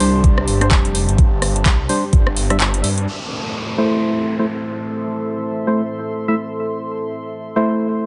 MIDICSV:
0, 0, Header, 1, 7, 480
1, 0, Start_track
1, 0, Key_signature, 0, "minor"
1, 0, Tempo, 472441
1, 1203, Time_signature, 4, 2, 24, 8
1, 8191, End_track
2, 0, Start_track
2, 0, Title_t, "Ambient pad"
2, 0, Program_c, 0, 92
2, 0, Note_on_c, 0, 67, 91
2, 0, Note_on_c, 0, 74, 74
2, 0, Note_on_c, 0, 81, 90
2, 0, Note_on_c, 0, 84, 72
2, 3123, Note_off_c, 0, 84, 0
2, 3123, Note_on_c, 0, 69, 82
2, 3694, Note_on_c, 0, 76, 71
2, 4179, Note_on_c, 0, 84, 73
2, 4194, Note_off_c, 0, 81, 0
2, 4358, Note_off_c, 0, 74, 0
2, 4733, Note_off_c, 0, 67, 0
2, 8191, Note_off_c, 0, 69, 0
2, 8191, Note_off_c, 0, 76, 0
2, 8191, Note_off_c, 0, 84, 0
2, 8191, End_track
3, 0, Start_track
3, 0, Title_t, "Synth stab"
3, 0, Program_c, 1, 62
3, 3, Note_on_c, 1, 55, 109
3, 3, Note_on_c, 1, 62, 100
3, 3, Note_on_c, 1, 72, 116
3, 590, Note_off_c, 1, 55, 0
3, 590, Note_off_c, 1, 62, 0
3, 590, Note_off_c, 1, 72, 0
3, 623, Note_on_c, 1, 55, 81
3, 623, Note_on_c, 1, 62, 76
3, 623, Note_on_c, 1, 72, 92
3, 690, Note_off_c, 1, 55, 0
3, 690, Note_off_c, 1, 62, 0
3, 690, Note_off_c, 1, 72, 0
3, 1923, Note_on_c, 1, 55, 80
3, 1923, Note_on_c, 1, 62, 72
3, 1923, Note_on_c, 1, 72, 89
3, 2071, Note_off_c, 1, 55, 0
3, 2071, Note_off_c, 1, 62, 0
3, 2071, Note_off_c, 1, 72, 0
3, 2543, Note_on_c, 1, 55, 86
3, 2543, Note_on_c, 1, 62, 77
3, 2543, Note_on_c, 1, 76, 95
3, 2610, Note_off_c, 1, 55, 0
3, 2610, Note_off_c, 1, 62, 0
3, 2610, Note_off_c, 1, 76, 0
3, 3843, Note_on_c, 1, 57, 102
3, 3843, Note_on_c, 1, 64, 91
3, 3843, Note_on_c, 1, 72, 112
3, 4430, Note_off_c, 1, 57, 0
3, 4430, Note_off_c, 1, 64, 0
3, 4430, Note_off_c, 1, 72, 0
3, 4463, Note_on_c, 1, 57, 80
3, 4463, Note_on_c, 1, 64, 76
3, 4463, Note_on_c, 1, 72, 92
3, 4530, Note_off_c, 1, 57, 0
3, 4530, Note_off_c, 1, 64, 0
3, 4530, Note_off_c, 1, 72, 0
3, 5763, Note_on_c, 1, 57, 75
3, 5763, Note_on_c, 1, 64, 67
3, 5763, Note_on_c, 1, 72, 78
3, 5911, Note_off_c, 1, 57, 0
3, 5911, Note_off_c, 1, 64, 0
3, 5911, Note_off_c, 1, 72, 0
3, 6383, Note_on_c, 1, 57, 82
3, 6383, Note_on_c, 1, 64, 72
3, 6383, Note_on_c, 1, 76, 95
3, 6450, Note_off_c, 1, 57, 0
3, 6450, Note_off_c, 1, 64, 0
3, 6450, Note_off_c, 1, 76, 0
3, 7683, Note_on_c, 1, 57, 103
3, 7683, Note_on_c, 1, 64, 91
3, 7683, Note_on_c, 1, 72, 108
3, 8191, Note_off_c, 1, 57, 0
3, 8191, Note_off_c, 1, 64, 0
3, 8191, Note_off_c, 1, 72, 0
3, 8191, End_track
4, 0, Start_track
4, 0, Title_t, "Analog synth pad"
4, 0, Program_c, 2, 89
4, 0, Note_on_c, 2, 55, 83
4, 0, Note_on_c, 2, 62, 75
4, 0, Note_on_c, 2, 72, 93
4, 3082, Note_off_c, 2, 55, 0
4, 3083, Note_off_c, 2, 62, 0
4, 3083, Note_off_c, 2, 72, 0
4, 3123, Note_on_c, 2, 57, 80
4, 3123, Note_on_c, 2, 64, 73
4, 3123, Note_on_c, 2, 72, 90
4, 8191, Note_off_c, 2, 57, 0
4, 8191, Note_off_c, 2, 64, 0
4, 8191, Note_off_c, 2, 72, 0
4, 8191, End_track
5, 0, Start_track
5, 0, Title_t, "Detuned saw bass"
5, 0, Program_c, 3, 39
5, 3, Note_on_c, 3, 36, 98
5, 467, Note_off_c, 3, 36, 0
5, 483, Note_on_c, 3, 31, 96
5, 707, Note_off_c, 3, 31, 0
5, 723, Note_on_c, 3, 29, 94
5, 1081, Note_off_c, 3, 29, 0
5, 1103, Note_on_c, 3, 31, 94
5, 1427, Note_off_c, 3, 31, 0
5, 1443, Note_on_c, 3, 31, 94
5, 1667, Note_off_c, 3, 31, 0
5, 1683, Note_on_c, 3, 36, 95
5, 1907, Note_off_c, 3, 36, 0
5, 2163, Note_on_c, 3, 31, 102
5, 2281, Note_off_c, 3, 31, 0
5, 2303, Note_on_c, 3, 31, 99
5, 2627, Note_off_c, 3, 31, 0
5, 2643, Note_on_c, 3, 31, 102
5, 2867, Note_off_c, 3, 31, 0
5, 2882, Note_on_c, 3, 43, 101
5, 3107, Note_off_c, 3, 43, 0
5, 8191, End_track
6, 0, Start_track
6, 0, Title_t, "Downlifter"
6, 0, Program_c, 4, 103
6, 3123, Note_on_c, 4, 60, 64
6, 6963, Note_off_c, 4, 60, 0
6, 8191, End_track
7, 0, Start_track
7, 0, Title_t, "Drums"
7, 3, Note_on_c, 9, 46, 102
7, 105, Note_off_c, 9, 46, 0
7, 243, Note_on_c, 9, 36, 114
7, 243, Note_on_c, 9, 42, 66
7, 345, Note_off_c, 9, 36, 0
7, 345, Note_off_c, 9, 42, 0
7, 383, Note_on_c, 9, 37, 87
7, 483, Note_on_c, 9, 46, 101
7, 485, Note_off_c, 9, 37, 0
7, 585, Note_off_c, 9, 46, 0
7, 623, Note_on_c, 9, 37, 87
7, 623, Note_on_c, 9, 42, 55
7, 723, Note_off_c, 9, 42, 0
7, 723, Note_on_c, 9, 36, 100
7, 723, Note_on_c, 9, 42, 72
7, 725, Note_off_c, 9, 37, 0
7, 725, Note_on_c, 9, 39, 122
7, 825, Note_off_c, 9, 36, 0
7, 825, Note_off_c, 9, 42, 0
7, 827, Note_off_c, 9, 39, 0
7, 863, Note_on_c, 9, 42, 52
7, 963, Note_on_c, 9, 46, 101
7, 965, Note_off_c, 9, 42, 0
7, 1065, Note_off_c, 9, 46, 0
7, 1104, Note_on_c, 9, 42, 54
7, 1203, Note_off_c, 9, 42, 0
7, 1203, Note_on_c, 9, 36, 118
7, 1203, Note_on_c, 9, 42, 67
7, 1305, Note_off_c, 9, 36, 0
7, 1305, Note_off_c, 9, 42, 0
7, 1443, Note_on_c, 9, 37, 85
7, 1443, Note_on_c, 9, 46, 100
7, 1545, Note_off_c, 9, 37, 0
7, 1545, Note_off_c, 9, 46, 0
7, 1584, Note_on_c, 9, 42, 57
7, 1683, Note_off_c, 9, 42, 0
7, 1683, Note_on_c, 9, 36, 98
7, 1683, Note_on_c, 9, 42, 67
7, 1685, Note_on_c, 9, 39, 124
7, 1785, Note_off_c, 9, 36, 0
7, 1785, Note_off_c, 9, 42, 0
7, 1787, Note_off_c, 9, 39, 0
7, 1923, Note_on_c, 9, 46, 96
7, 2025, Note_off_c, 9, 46, 0
7, 2163, Note_on_c, 9, 36, 109
7, 2163, Note_on_c, 9, 42, 71
7, 2264, Note_off_c, 9, 42, 0
7, 2265, Note_off_c, 9, 36, 0
7, 2303, Note_on_c, 9, 37, 82
7, 2403, Note_on_c, 9, 46, 102
7, 2405, Note_off_c, 9, 37, 0
7, 2505, Note_off_c, 9, 46, 0
7, 2543, Note_on_c, 9, 37, 85
7, 2543, Note_on_c, 9, 42, 58
7, 2643, Note_off_c, 9, 42, 0
7, 2643, Note_on_c, 9, 42, 73
7, 2645, Note_off_c, 9, 37, 0
7, 2645, Note_on_c, 9, 39, 126
7, 2745, Note_off_c, 9, 42, 0
7, 2747, Note_off_c, 9, 39, 0
7, 2784, Note_on_c, 9, 42, 56
7, 2883, Note_on_c, 9, 46, 100
7, 2885, Note_off_c, 9, 42, 0
7, 2985, Note_off_c, 9, 46, 0
7, 3024, Note_on_c, 9, 42, 55
7, 3125, Note_off_c, 9, 42, 0
7, 8191, End_track
0, 0, End_of_file